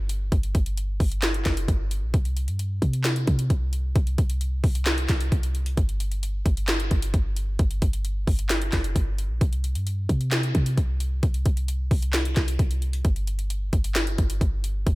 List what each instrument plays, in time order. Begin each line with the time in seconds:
Already playing: 808-style bass G1
0.09 closed hi-hat
0.32 808-style bass G1, kick, closed hi-hat
0.43 closed hi-hat
0.55 808-style bass G1, kick, closed hi-hat
0.66 closed hi-hat
0.77 closed hi-hat
1.00 808-style bass G1, kick, open hi-hat
1.12 closed hi-hat
1.22 snare, clap, closed hi-hat
1.34 closed hi-hat
1.45 808-style bass F#1, kick, snare, clap, closed hi-hat
1.57 closed hi-hat
1.68 808-style bass G1, kick, closed hi-hat
1.91 closed hi-hat
2.03 808-style bass A#1
2.14 808-style bass C2, kick, closed hi-hat
2.25 closed hi-hat
2.37 closed hi-hat
2.48 808-style bass G2, closed hi-hat
2.59 closed hi-hat
2.82 808-style bass C3, kick, closed hi-hat
2.93 closed hi-hat
3.04 snare, clap, closed hi-hat
3.16 closed hi-hat
3.27 808-style bass C3, kick, closed hi-hat
3.39 closed hi-hat
3.50 808-style bass C2, kick, closed hi-hat
3.73 closed hi-hat
3.96 808-style bass C2, kick, closed hi-hat
4.07 closed hi-hat
4.18 808-style bass C2, kick, closed hi-hat
4.30 closed hi-hat
4.41 closed hi-hat
4.64 808-style bass C2, kick, open hi-hat
4.75 closed hi-hat
4.86 snare, clap, closed hi-hat
4.98 closed hi-hat
5.08 808-style bass C2, kick, snare, clap, closed hi-hat
5.21 closed hi-hat
5.32 808-style bass C2, kick, closed hi-hat
5.43 closed hi-hat
5.55 closed hi-hat
5.66 closed hi-hat
5.77 808-style bass G1, kick, closed hi-hat
5.89 closed hi-hat
6.00 closed hi-hat
6.12 closed hi-hat
6.23 closed hi-hat
6.46 808-style bass G1, kick, closed hi-hat
6.57 closed hi-hat
6.68 snare, clap, closed hi-hat
6.80 closed hi-hat
6.91 808-style bass G1, kick, closed hi-hat
7.02 closed hi-hat
7.14 808-style bass G1, kick, closed hi-hat
7.36 closed hi-hat
7.59 808-style bass G1, kick, closed hi-hat
7.71 closed hi-hat
7.82 808-style bass G1, kick, closed hi-hat
7.93 closed hi-hat
8.05 closed hi-hat
8.27 808-style bass G1, kick, open hi-hat
8.39 closed hi-hat
8.49 snare, clap, closed hi-hat
8.62 closed hi-hat
8.72 808-style bass F#1, kick, snare, clap, closed hi-hat
8.84 closed hi-hat
8.96 808-style bass G1, kick, closed hi-hat
9.18 closed hi-hat
9.30 808-style bass A#1
9.41 808-style bass C2, kick, closed hi-hat
9.53 closed hi-hat
9.64 closed hi-hat
9.75 808-style bass G2, closed hi-hat
9.87 closed hi-hat
10.09 808-style bass C3, kick, closed hi-hat
10.21 closed hi-hat
10.31 snare, clap, closed hi-hat
10.43 closed hi-hat
10.55 808-style bass C3, kick, closed hi-hat
10.66 closed hi-hat
10.77 808-style bass C2, kick, closed hi-hat
11.00 closed hi-hat
11.23 808-style bass C2, kick, closed hi-hat
11.34 closed hi-hat
11.46 808-style bass C2, kick, closed hi-hat
11.57 closed hi-hat
11.68 closed hi-hat
11.91 808-style bass C2, kick, open hi-hat
12.02 closed hi-hat
12.13 snare, clap, closed hi-hat
12.25 closed hi-hat
12.36 808-style bass C2, kick, snare, clap, closed hi-hat
12.48 closed hi-hat
12.59 808-style bass C2, kick, closed hi-hat
12.71 closed hi-hat
12.82 closed hi-hat
12.93 closed hi-hat
13.05 808-style bass G1, kick, closed hi-hat
13.16 closed hi-hat
13.27 closed hi-hat
13.39 closed hi-hat
13.50 closed hi-hat
13.73 808-style bass G1, kick, closed hi-hat
13.84 closed hi-hat
13.95 snare, clap, closed hi-hat
14.07 closed hi-hat
14.18 808-style bass G1, kick, closed hi-hat
14.30 closed hi-hat
14.41 808-style bass G1, kick, closed hi-hat
14.64 closed hi-hat
14.87 808-style bass G1, kick, closed hi-hat